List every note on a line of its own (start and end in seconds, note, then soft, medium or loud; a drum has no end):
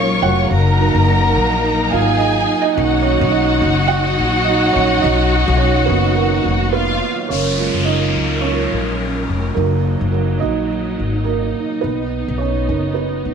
0.00 0.18 A#1 medium
0.00 2.73 F#3 medium
0.00 0.47 G#3 medium
0.00 0.53 A#3 medium
0.00 0.49 C#4 medium
0.00 0.53 C#4 medium
0.00 0.53 D#4 medium
0.00 0.49 F4 medium
0.00 0.53 F4 medium
0.00 0.49 A#4 medium
0.00 0.53 A#4 medium
0.00 0.47 C#5 medium
0.00 0.53 C#5 medium
0.00 0.53 D#5 medium
0.00 0.25 F5 medium
0.00 0.47 C#6 medium
0.22 0.49 F1 medium
0.22 1.33 F#4 medium
0.22 1.32 F#5 loud
0.50 0.92 F#1 medium
0.50 2.75 A#3 medium
0.50 7.26 D#4 medium
0.50 1.90 A#4 medium
0.50 1.90 A#5 medium
0.79 1.18 F#3 medium
0.79 1.19 A#3 soft
0.79 1.19 D#4 medium
0.95 1.33 F#1 medium
1.35 1.88 A#1 medium
1.91 2.45 G#1 medium
1.91 2.19 F4 medium
1.91 2.76 G#4 medium
1.91 2.21 F5 medium
1.91 2.75 G#5 medium
2.18 2.62 D#4 medium
2.18 2.60 D#5 medium
2.62 3.03 D#4 medium
2.62 3.05 D#5 loud
2.75 3.19 B1 loud
2.75 3.57 D#3 medium
2.75 7.27 F#3 medium
2.75 3.58 A#3 medium
2.75 3.04 C#4 medium
2.75 6.70 F#4 medium
2.75 6.70 F#5 medium
3.02 3.32 C#4 medium
3.02 3.33 C#5 medium
3.21 3.59 B1 loud
3.30 3.86 D#4 medium
3.30 3.91 D#5 medium
3.62 4.15 F#1 medium
3.88 4.44 F#4 medium
3.88 4.48 F#5 loud
4.19 4.71 A#1 medium
4.45 4.72 D#5 loud
4.49 4.74 D#4 medium
4.73 5.02 A#1 medium
4.73 5.02 C#4 medium
4.73 5.04 C#5 loud
5.01 5.45 B1 loud
5.01 5.57 D#4 medium
5.01 5.55 D#5 medium
5.48 5.86 B1 loud
5.57 5.87 C#4 medium
5.57 5.88 C#5 medium
5.86 6.42 F#1 medium
5.86 6.69 D#3 medium
5.86 6.16 A#3 soft
5.86 6.15 B3 medium
5.86 6.70 C#4 medium
5.86 6.17 B4 medium
6.15 6.99 A#3 medium
6.15 6.97 A#4 medium
6.45 6.98 F1 medium
6.73 7.27 B3 medium
6.73 7.29 F4 medium
6.73 7.32 B4 medium
6.73 7.29 F5 medium
7.29 7.71 F#1 medium
7.29 9.56 F#3 medium
7.29 7.83 C#4 medium
7.29 9.56 C#4 medium
7.29 9.56 F4 medium
7.29 9.56 A#4 medium
7.29 7.88 C#5 medium
7.29 downlifter medium
7.58 9.53 G#3 soft
7.58 9.53 A#3 soft
7.58 9.53 F4 soft
7.74 8.12 F#1 medium
7.85 8.40 D#4 medium
7.85 8.44 D#5 medium
8.16 8.68 C#2 medium
8.41 9.53 C#4 medium
8.41 9.59 C#5 medium
8.72 9.25 A#1 medium
9.29 9.55 F1 medium
9.55 9.98 F#1 medium
9.55 10.40 F#3 soft
9.55 10.10 A#3 medium
9.55 10.40 D#4 soft
9.55 13.34 D#4 medium
9.55 10.10 A#4 medium
9.59 11.83 F#3 medium
10.01 10.39 F#1 medium
10.12 10.40 A#3 medium
10.12 10.42 A#4 medium
10.40 10.95 A#1 medium
10.40 10.67 F#3 soft
10.40 10.67 A#3 soft
10.40 11.23 D#4 medium
10.40 11.22 D#5 medium
10.99 11.52 G#1 medium
11.24 11.80 A#3 medium
11.24 11.84 A#4 medium
11.81 12.25 B1 medium
11.81 13.34 B3 medium
11.81 12.37 B3 medium
11.81 12.41 B4 medium
12.28 12.66 B1 medium
12.38 12.67 C#4 medium
12.38 12.92 C#5 medium
12.68 13.22 F#1 medium
12.68 13.34 C#4 soft
12.68 13.34 D#4 soft
12.68 13.34 A#4 soft
12.94 13.34 B3 medium
12.94 13.34 B4 medium
13.25 13.34 A#1 medium